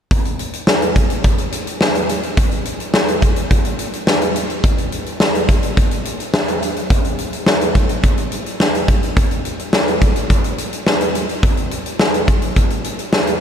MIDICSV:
0, 0, Header, 1, 2, 480
1, 0, Start_track
1, 0, Tempo, 566038
1, 94, Time_signature, 4, 2, 24, 8
1, 11367, End_track
2, 0, Start_track
2, 0, Title_t, "Drums"
2, 93, Note_on_c, 9, 36, 96
2, 93, Note_on_c, 9, 42, 74
2, 178, Note_off_c, 9, 36, 0
2, 178, Note_off_c, 9, 42, 0
2, 213, Note_on_c, 9, 42, 47
2, 298, Note_off_c, 9, 42, 0
2, 331, Note_on_c, 9, 42, 60
2, 416, Note_off_c, 9, 42, 0
2, 452, Note_on_c, 9, 42, 49
2, 537, Note_off_c, 9, 42, 0
2, 569, Note_on_c, 9, 38, 95
2, 654, Note_off_c, 9, 38, 0
2, 695, Note_on_c, 9, 42, 50
2, 779, Note_off_c, 9, 42, 0
2, 813, Note_on_c, 9, 36, 76
2, 813, Note_on_c, 9, 42, 65
2, 898, Note_off_c, 9, 36, 0
2, 898, Note_off_c, 9, 42, 0
2, 931, Note_on_c, 9, 42, 48
2, 1016, Note_off_c, 9, 42, 0
2, 1050, Note_on_c, 9, 42, 67
2, 1055, Note_on_c, 9, 36, 77
2, 1135, Note_off_c, 9, 42, 0
2, 1139, Note_off_c, 9, 36, 0
2, 1172, Note_on_c, 9, 42, 51
2, 1256, Note_off_c, 9, 42, 0
2, 1292, Note_on_c, 9, 42, 67
2, 1376, Note_off_c, 9, 42, 0
2, 1415, Note_on_c, 9, 42, 49
2, 1500, Note_off_c, 9, 42, 0
2, 1533, Note_on_c, 9, 38, 96
2, 1617, Note_off_c, 9, 38, 0
2, 1654, Note_on_c, 9, 42, 53
2, 1739, Note_off_c, 9, 42, 0
2, 1774, Note_on_c, 9, 42, 66
2, 1858, Note_off_c, 9, 42, 0
2, 1893, Note_on_c, 9, 42, 42
2, 1978, Note_off_c, 9, 42, 0
2, 2012, Note_on_c, 9, 42, 78
2, 2013, Note_on_c, 9, 36, 97
2, 2096, Note_off_c, 9, 42, 0
2, 2098, Note_off_c, 9, 36, 0
2, 2132, Note_on_c, 9, 42, 47
2, 2217, Note_off_c, 9, 42, 0
2, 2250, Note_on_c, 9, 42, 57
2, 2335, Note_off_c, 9, 42, 0
2, 2373, Note_on_c, 9, 42, 48
2, 2458, Note_off_c, 9, 42, 0
2, 2490, Note_on_c, 9, 38, 96
2, 2575, Note_off_c, 9, 38, 0
2, 2614, Note_on_c, 9, 42, 51
2, 2698, Note_off_c, 9, 42, 0
2, 2732, Note_on_c, 9, 42, 69
2, 2733, Note_on_c, 9, 36, 75
2, 2817, Note_off_c, 9, 42, 0
2, 2818, Note_off_c, 9, 36, 0
2, 2850, Note_on_c, 9, 42, 52
2, 2935, Note_off_c, 9, 42, 0
2, 2972, Note_on_c, 9, 42, 70
2, 2975, Note_on_c, 9, 36, 78
2, 3057, Note_off_c, 9, 42, 0
2, 3060, Note_off_c, 9, 36, 0
2, 3092, Note_on_c, 9, 42, 51
2, 3177, Note_off_c, 9, 42, 0
2, 3212, Note_on_c, 9, 42, 67
2, 3296, Note_off_c, 9, 42, 0
2, 3336, Note_on_c, 9, 42, 47
2, 3421, Note_off_c, 9, 42, 0
2, 3452, Note_on_c, 9, 38, 95
2, 3537, Note_off_c, 9, 38, 0
2, 3574, Note_on_c, 9, 42, 54
2, 3659, Note_off_c, 9, 42, 0
2, 3694, Note_on_c, 9, 42, 67
2, 3779, Note_off_c, 9, 42, 0
2, 3814, Note_on_c, 9, 42, 42
2, 3899, Note_off_c, 9, 42, 0
2, 3933, Note_on_c, 9, 36, 98
2, 3933, Note_on_c, 9, 42, 72
2, 4018, Note_off_c, 9, 36, 0
2, 4018, Note_off_c, 9, 42, 0
2, 4054, Note_on_c, 9, 42, 47
2, 4138, Note_off_c, 9, 42, 0
2, 4172, Note_on_c, 9, 42, 58
2, 4257, Note_off_c, 9, 42, 0
2, 4293, Note_on_c, 9, 42, 48
2, 4378, Note_off_c, 9, 42, 0
2, 4411, Note_on_c, 9, 38, 95
2, 4496, Note_off_c, 9, 38, 0
2, 4535, Note_on_c, 9, 42, 51
2, 4620, Note_off_c, 9, 42, 0
2, 4653, Note_on_c, 9, 42, 70
2, 4654, Note_on_c, 9, 36, 78
2, 4738, Note_off_c, 9, 36, 0
2, 4738, Note_off_c, 9, 42, 0
2, 4771, Note_on_c, 9, 42, 51
2, 4856, Note_off_c, 9, 42, 0
2, 4892, Note_on_c, 9, 42, 66
2, 4895, Note_on_c, 9, 36, 80
2, 4977, Note_off_c, 9, 42, 0
2, 4980, Note_off_c, 9, 36, 0
2, 5012, Note_on_c, 9, 42, 51
2, 5097, Note_off_c, 9, 42, 0
2, 5132, Note_on_c, 9, 42, 65
2, 5217, Note_off_c, 9, 42, 0
2, 5256, Note_on_c, 9, 42, 49
2, 5341, Note_off_c, 9, 42, 0
2, 5374, Note_on_c, 9, 38, 98
2, 5458, Note_off_c, 9, 38, 0
2, 5495, Note_on_c, 9, 42, 54
2, 5580, Note_off_c, 9, 42, 0
2, 5616, Note_on_c, 9, 42, 65
2, 5701, Note_off_c, 9, 42, 0
2, 5735, Note_on_c, 9, 42, 42
2, 5820, Note_off_c, 9, 42, 0
2, 5854, Note_on_c, 9, 36, 97
2, 5855, Note_on_c, 9, 42, 73
2, 5939, Note_off_c, 9, 36, 0
2, 5939, Note_off_c, 9, 42, 0
2, 5974, Note_on_c, 9, 42, 50
2, 6058, Note_off_c, 9, 42, 0
2, 6092, Note_on_c, 9, 42, 61
2, 6177, Note_off_c, 9, 42, 0
2, 6214, Note_on_c, 9, 42, 49
2, 6299, Note_off_c, 9, 42, 0
2, 6330, Note_on_c, 9, 38, 100
2, 6415, Note_off_c, 9, 38, 0
2, 6454, Note_on_c, 9, 42, 50
2, 6539, Note_off_c, 9, 42, 0
2, 6573, Note_on_c, 9, 42, 73
2, 6574, Note_on_c, 9, 36, 79
2, 6658, Note_off_c, 9, 36, 0
2, 6658, Note_off_c, 9, 42, 0
2, 6691, Note_on_c, 9, 42, 53
2, 6775, Note_off_c, 9, 42, 0
2, 6811, Note_on_c, 9, 42, 67
2, 6815, Note_on_c, 9, 36, 75
2, 6896, Note_off_c, 9, 42, 0
2, 6900, Note_off_c, 9, 36, 0
2, 6932, Note_on_c, 9, 42, 48
2, 7017, Note_off_c, 9, 42, 0
2, 7052, Note_on_c, 9, 42, 64
2, 7137, Note_off_c, 9, 42, 0
2, 7175, Note_on_c, 9, 42, 48
2, 7260, Note_off_c, 9, 42, 0
2, 7294, Note_on_c, 9, 38, 94
2, 7379, Note_off_c, 9, 38, 0
2, 7417, Note_on_c, 9, 42, 51
2, 7501, Note_off_c, 9, 42, 0
2, 7533, Note_on_c, 9, 36, 82
2, 7535, Note_on_c, 9, 42, 67
2, 7618, Note_off_c, 9, 36, 0
2, 7620, Note_off_c, 9, 42, 0
2, 7655, Note_on_c, 9, 42, 43
2, 7740, Note_off_c, 9, 42, 0
2, 7774, Note_on_c, 9, 36, 98
2, 7774, Note_on_c, 9, 42, 76
2, 7859, Note_off_c, 9, 36, 0
2, 7859, Note_off_c, 9, 42, 0
2, 7894, Note_on_c, 9, 42, 47
2, 7979, Note_off_c, 9, 42, 0
2, 8013, Note_on_c, 9, 42, 56
2, 8097, Note_off_c, 9, 42, 0
2, 8135, Note_on_c, 9, 42, 48
2, 8220, Note_off_c, 9, 42, 0
2, 8251, Note_on_c, 9, 38, 96
2, 8335, Note_off_c, 9, 38, 0
2, 8375, Note_on_c, 9, 42, 51
2, 8460, Note_off_c, 9, 42, 0
2, 8494, Note_on_c, 9, 36, 73
2, 8494, Note_on_c, 9, 42, 68
2, 8579, Note_off_c, 9, 36, 0
2, 8579, Note_off_c, 9, 42, 0
2, 8613, Note_on_c, 9, 42, 49
2, 8698, Note_off_c, 9, 42, 0
2, 8732, Note_on_c, 9, 42, 68
2, 8735, Note_on_c, 9, 36, 78
2, 8817, Note_off_c, 9, 42, 0
2, 8820, Note_off_c, 9, 36, 0
2, 8854, Note_on_c, 9, 42, 50
2, 8938, Note_off_c, 9, 42, 0
2, 8973, Note_on_c, 9, 42, 66
2, 9058, Note_off_c, 9, 42, 0
2, 9095, Note_on_c, 9, 42, 49
2, 9180, Note_off_c, 9, 42, 0
2, 9214, Note_on_c, 9, 38, 92
2, 9299, Note_off_c, 9, 38, 0
2, 9333, Note_on_c, 9, 42, 53
2, 9418, Note_off_c, 9, 42, 0
2, 9455, Note_on_c, 9, 42, 63
2, 9539, Note_off_c, 9, 42, 0
2, 9574, Note_on_c, 9, 42, 44
2, 9659, Note_off_c, 9, 42, 0
2, 9693, Note_on_c, 9, 36, 99
2, 9693, Note_on_c, 9, 42, 76
2, 9778, Note_off_c, 9, 36, 0
2, 9778, Note_off_c, 9, 42, 0
2, 9812, Note_on_c, 9, 42, 47
2, 9897, Note_off_c, 9, 42, 0
2, 9932, Note_on_c, 9, 42, 60
2, 10016, Note_off_c, 9, 42, 0
2, 10054, Note_on_c, 9, 42, 49
2, 10139, Note_off_c, 9, 42, 0
2, 10172, Note_on_c, 9, 38, 91
2, 10256, Note_off_c, 9, 38, 0
2, 10294, Note_on_c, 9, 42, 53
2, 10379, Note_off_c, 9, 42, 0
2, 10413, Note_on_c, 9, 36, 79
2, 10413, Note_on_c, 9, 42, 68
2, 10498, Note_off_c, 9, 36, 0
2, 10498, Note_off_c, 9, 42, 0
2, 10530, Note_on_c, 9, 42, 52
2, 10615, Note_off_c, 9, 42, 0
2, 10651, Note_on_c, 9, 42, 71
2, 10655, Note_on_c, 9, 36, 77
2, 10736, Note_off_c, 9, 42, 0
2, 10739, Note_off_c, 9, 36, 0
2, 10772, Note_on_c, 9, 42, 48
2, 10857, Note_off_c, 9, 42, 0
2, 10891, Note_on_c, 9, 42, 67
2, 10976, Note_off_c, 9, 42, 0
2, 11013, Note_on_c, 9, 42, 47
2, 11098, Note_off_c, 9, 42, 0
2, 11131, Note_on_c, 9, 38, 98
2, 11216, Note_off_c, 9, 38, 0
2, 11252, Note_on_c, 9, 42, 52
2, 11337, Note_off_c, 9, 42, 0
2, 11367, End_track
0, 0, End_of_file